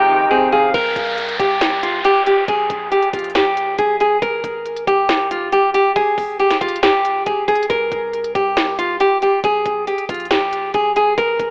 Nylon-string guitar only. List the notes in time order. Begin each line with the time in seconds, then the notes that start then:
Already playing: G4
0.31 G#4
0.52 G#4
0.74 A#4
1.40 G4
1.83 F4
2.05 G4
2.27 G4
2.49 G#4
2.92 G4
3.14 F4
3.35 G4
3.79 G#4
4.01 G#4
4.22 A#4
4.87 G4
5.31 F4
5.52 G4
5.74 G4
5.96 G#4
6.40 G4
6.61 F4
6.83 G4
7.26 G#4
7.48 G#4
7.70 A#4
8.35 G4
8.79 F4
9.00 G4
9.22 G4
9.44 G#4
9.87 G4
10.09 F4
10.31 G4
10.74 G#4
10.96 G#4
11.18 A#4